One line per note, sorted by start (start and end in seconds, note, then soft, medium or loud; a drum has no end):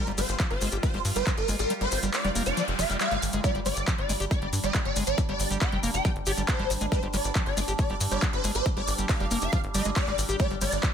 0.00 3.43 G3 medium
0.00 3.46 F4 medium
0.07 0.14 G1 medium
0.07 0.12 G3 medium
0.07 closed hi-hat soft
0.18 0.25 G1 loud
0.18 0.21 G3 loud
0.18 0.35 C5 loud
0.18 open hi-hat loud
0.18 maracas loud
0.29 0.36 G1 medium
0.29 closed hi-hat medium
0.29 maracas soft
0.39 0.47 F3 medium
0.39 kick loud
0.39 clap loud
0.39 closed hi-hat medium
0.39 maracas soft
0.51 0.57 G1 medium
0.51 0.68 C5 medium
0.51 closed hi-hat soft
0.61 0.68 G1 loud
0.61 0.69 G#3 medium
0.61 open hi-hat medium
0.61 maracas medium
0.71 0.79 G1 loud
0.71 0.77 G4 medium
0.71 closed hi-hat medium
0.71 maracas soft
0.83 1.00 C5 loud
0.83 kick loud
0.83 closed hi-hat medium
0.83 maracas soft
0.94 1.01 G1 medium
0.94 0.99 G3 medium
0.94 closed hi-hat soft
1.05 1.12 G2 loud
1.05 open hi-hat loud
1.05 maracas medium
1.16 1.23 G1 loud
1.16 1.23 G3 medium
1.16 1.27 C5 medium
1.16 closed hi-hat medium
1.16 maracas soft
1.27 1.32 F3 medium
1.27 kick loud
1.27 clap loud
1.27 closed hi-hat medium
1.27 maracas soft
1.37 1.44 G1 medium
1.37 1.49 A#4 medium
1.37 closed hi-hat soft
1.48 1.55 G1 loud
1.48 1.56 G#3 medium
1.48 open hi-hat medium
1.48 maracas medium
1.59 1.66 G#1 loud
1.59 1.71 A#4 medium
1.59 closed hi-hat medium
1.59 maracas soft
1.70 1.73 G3 medium
1.70 closed hi-hat medium
1.70 noise sweep medium
1.70 maracas soft
1.81 1.88 G1 medium
1.81 1.86 G3 medium
1.81 1.98 C5 loud
1.81 closed hi-hat soft
1.91 1.99 G1 loud
1.91 open hi-hat loud
1.91 maracas medium
2.03 2.10 G1 medium
2.03 2.10 G3 medium
2.03 closed hi-hat medium
2.03 maracas medium
2.13 2.31 D5 loud
2.13 clap loud
2.13 closed hi-hat medium
2.13 maracas soft
2.24 2.31 F1 medium
2.24 2.30 G3 loud
2.24 closed hi-hat soft
2.35 2.42 F1 loud
2.35 2.43 A#3 loud
2.35 open hi-hat medium
2.35 maracas medium
2.46 2.53 F1 medium
2.46 2.63 D5 medium
2.46 closed hi-hat medium
2.46 maracas medium
2.57 2.62 F3 loud
2.57 closed hi-hat medium
2.57 maracas soft
2.68 2.75 F1 medium
2.68 closed hi-hat soft
2.79 2.86 F1 loud
2.79 2.84 F3 loud
2.79 2.90 F5 medium
2.79 open hi-hat loud
2.79 maracas medium
2.90 2.97 F1 loud
2.90 2.97 G3 medium
2.90 closed hi-hat medium
2.90 maracas soft
3.00 3.08 G3 medium
3.00 3.24 F5 loud
3.00 clap loud
3.00 closed hi-hat medium
3.00 maracas soft
3.11 3.18 G1 medium
3.11 3.17 G#3 medium
3.11 clap soft
3.11 closed hi-hat soft
3.22 3.29 G1 loud
3.22 open hi-hat medium
3.22 maracas loud
3.33 3.40 G1 medium
3.33 3.41 G#3 medium
3.33 closed hi-hat medium
3.33 maracas medium
3.44 3.52 G3 loud
3.44 10.94 G3 medium
3.44 10.42 D4 medium
3.44 3.56 D5 loud
3.44 kick loud
3.44 closed hi-hat medium
3.44 maracas soft
3.55 3.62 G1 medium
3.55 3.60 G3 medium
3.55 closed hi-hat soft
3.66 3.73 G1 medium
3.66 3.69 G3 loud
3.66 3.83 D5 medium
3.66 open hi-hat loud
3.66 maracas medium
3.76 3.83 G1 medium
3.76 closed hi-hat medium
3.76 maracas medium
3.87 3.95 F3 medium
3.87 kick loud
3.87 clap loud
3.87 closed hi-hat medium
3.87 maracas soft
3.98 4.05 G1 medium
3.98 4.16 D5 loud
3.98 closed hi-hat soft
4.09 4.16 G1 loud
4.09 4.12 G#3 loud
4.09 open hi-hat medium
4.09 maracas medium
4.20 4.27 G1 medium
4.20 4.25 G4 medium
4.20 closed hi-hat medium
4.20 maracas medium
4.31 4.48 D5 loud
4.31 kick loud
4.31 closed hi-hat medium
4.31 maracas soft
4.42 4.49 G1 medium
4.42 4.47 G3 medium
4.42 closed hi-hat soft
4.53 4.60 G2 loud
4.53 open hi-hat loud
4.53 maracas medium
4.64 4.70 G1 medium
4.64 4.71 G3 medium
4.64 4.75 D#5 medium
4.64 closed hi-hat medium
4.64 maracas medium
4.74 4.80 F3 medium
4.74 kick loud
4.74 clap loud
4.74 closed hi-hat medium
4.74 maracas soft
4.85 4.92 G1 medium
4.85 4.97 D5 medium
4.85 closed hi-hat soft
4.96 5.03 G1 loud
4.96 5.04 G#3 medium
4.96 open hi-hat medium
4.96 maracas loud
5.07 5.14 G#1 medium
5.07 5.19 D5 medium
5.07 closed hi-hat medium
5.07 maracas medium
5.18 5.21 G3 medium
5.18 kick loud
5.18 closed hi-hat medium
5.18 maracas soft
5.29 5.36 G1 medium
5.29 5.34 G3 medium
5.29 5.46 D5 medium
5.29 closed hi-hat soft
5.39 5.47 G1 loud
5.39 open hi-hat loud
5.39 maracas loud
5.51 5.57 G1 medium
5.51 5.58 G3 medium
5.51 closed hi-hat medium
5.51 maracas medium
5.61 5.79 G5 loud
5.61 kick loud
5.61 clap loud
5.61 closed hi-hat medium
5.61 maracas soft
5.72 5.79 F1 medium
5.72 5.77 G3 loud
5.72 closed hi-hat soft
5.83 5.90 F1 loud
5.83 5.91 A#3 loud
5.83 open hi-hat medium
5.83 maracas medium
5.94 6.01 F1 medium
5.94 6.11 G5 medium
5.94 closed hi-hat medium
5.94 maracas medium
6.05 6.10 F3 loud
6.05 kick loud
6.05 closed hi-hat medium
6.05 maracas soft
6.16 6.23 G1 medium
6.16 closed hi-hat soft
6.26 6.33 G1 loud
6.26 6.32 G4 loud
6.26 6.38 D5 medium
6.26 open hi-hat loud
6.26 maracas medium
6.37 6.44 G1 medium
6.37 6.43 G3 medium
6.37 closed hi-hat medium
6.37 maracas soft
6.48 6.71 C5 loud
6.48 kick loud
6.48 clap loud
6.48 closed hi-hat medium
6.48 maracas soft
6.59 6.66 G#1 medium
6.59 6.64 G3 loud
6.59 closed hi-hat soft
6.70 6.77 G#1 loud
6.70 open hi-hat medium
6.70 maracas loud
6.81 6.88 G#1 loud
6.81 6.86 G#3 loud
6.81 closed hi-hat medium
6.81 maracas medium
6.92 7.00 G3 loud
6.92 7.03 C5 loud
6.92 kick loud
6.92 closed hi-hat medium
6.92 maracas soft
7.03 7.10 G1 medium
7.03 7.08 G3 medium
7.03 closed hi-hat soft
7.13 7.20 G1 loud
7.13 7.17 G3 medium
7.13 7.31 D5 loud
7.13 open hi-hat loud
7.13 maracas medium
7.24 7.31 G1 medium
7.24 closed hi-hat medium
7.24 maracas medium
7.35 7.43 F3 medium
7.35 kick loud
7.35 clap loud
7.35 closed hi-hat medium
7.35 maracas soft
7.46 7.53 G1 medium
7.46 7.63 D5 loud
7.46 closed hi-hat soft
7.57 7.64 G1 loud
7.57 7.60 G#3 loud
7.57 open hi-hat loud
7.57 maracas medium
7.68 7.75 G1 medium
7.68 7.73 G4 medium
7.68 closed hi-hat medium
7.68 maracas medium
7.78 7.96 D5 loud
7.78 kick loud
7.78 closed hi-hat medium
7.78 maracas soft
7.90 7.97 G1 medium
7.90 7.95 G3 medium
7.90 closed hi-hat soft
8.01 8.07 G2 loud
8.01 open hi-hat loud
8.01 maracas medium
8.11 8.18 G1 loud
8.11 8.19 G3 medium
8.11 8.23 D5 medium
8.11 closed hi-hat medium
8.11 maracas medium
8.22 8.27 F3 medium
8.22 kick loud
8.22 clap loud
8.22 closed hi-hat medium
8.22 maracas soft
8.33 8.40 G1 medium
8.33 8.45 C5 medium
8.33 closed hi-hat soft
8.44 8.51 G1 loud
8.44 8.52 G#3 medium
8.44 open hi-hat medium
8.44 maracas loud
8.55 8.62 G#1 loud
8.55 8.66 C5 medium
8.55 closed hi-hat medium
8.55 maracas medium
8.66 8.69 G3 medium
8.66 kick loud
8.66 closed hi-hat medium
8.66 maracas soft
8.77 8.83 G1 medium
8.77 8.82 G3 medium
8.77 8.94 D5 medium
8.77 closed hi-hat soft
8.88 8.94 G1 loud
8.88 open hi-hat loud
8.88 maracas loud
8.98 9.05 G1 medium
8.98 9.06 G3 medium
8.98 closed hi-hat soft
8.98 maracas medium
9.09 9.26 F5 loud
9.09 kick loud
9.09 clap loud
9.09 closed hi-hat soft
9.09 maracas soft
9.20 9.27 F1 medium
9.20 9.25 G3 loud
9.20 closed hi-hat soft
9.31 9.38 F1 loud
9.31 9.39 A#3 loud
9.31 open hi-hat loud
9.31 maracas medium
9.42 9.49 F1 medium
9.42 9.59 F5 loud
9.42 closed hi-hat medium
9.42 maracas medium
9.53 9.58 F3 loud
9.53 kick loud
9.53 closed hi-hat medium
9.53 maracas soft
9.64 9.70 G1 medium
9.64 closed hi-hat soft
9.74 9.81 G1 medium
9.74 9.82 G3 loud
9.74 9.86 D#5 medium
9.74 open hi-hat loud
9.74 maracas loud
9.85 9.92 G1 loud
9.85 9.90 G#3 loud
9.85 closed hi-hat medium
9.85 maracas medium
9.96 10.19 D5 loud
9.96 kick loud
9.96 clap loud
9.96 closed hi-hat medium
9.96 maracas soft
10.07 10.14 G#1 medium
10.07 10.12 G#3 medium
10.07 clap soft
10.07 closed hi-hat soft
10.18 10.25 G#1 loud
10.18 open hi-hat medium
10.18 maracas loud
10.29 10.36 G#1 loud
10.29 10.36 G4 loud
10.29 closed hi-hat soft
10.29 maracas medium
10.39 10.47 G3 loud
10.39 10.94 F4 medium
10.39 10.51 D5 loud
10.39 kick loud
10.39 closed hi-hat soft
10.39 maracas soft
10.51 10.57 G1 medium
10.51 10.56 G3 medium
10.51 closed hi-hat soft
10.61 10.68 G1 medium
10.61 10.64 G3 loud
10.61 10.79 D5 loud
10.61 open hi-hat loud
10.61 ride medium
10.61 maracas loud
10.72 10.79 G1 medium
10.72 closed hi-hat medium
10.72 maracas medium
10.83 10.91 F3 medium
10.83 kick loud
10.83 clap loud
10.83 closed hi-hat soft
10.83 maracas soft